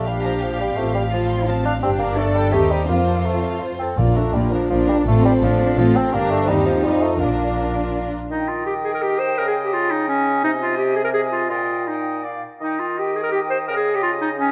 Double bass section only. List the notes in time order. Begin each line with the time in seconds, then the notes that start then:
Already playing: A#1
0.78 A1
1.83 G1
2.53 D#2
2.90 F2
3.99 A#1
4.35 A#1
4.71 A#1
5.07 A1
5.43 A1
5.78 A1
6.13 G1
6.48 D#2
6.84 F2
7.20 A#1